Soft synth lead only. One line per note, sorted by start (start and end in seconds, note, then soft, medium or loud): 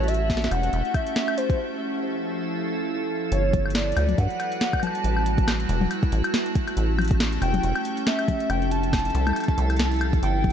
0.08 0.53 E5 loud
0.51 0.96 F#5 loud
0.95 1.39 E5 loud
1.38 1.59 C5 loud
3.32 3.72 C#5 loud
3.75 4.20 D5 medium
4.18 4.84 F#5 loud
4.83 5.48 A5 loud
7.42 7.82 G5 loud
8.07 8.51 E5 loud
8.50 8.71 G5 loud
8.72 9.97 A5 loud
10.23 10.53 G5 loud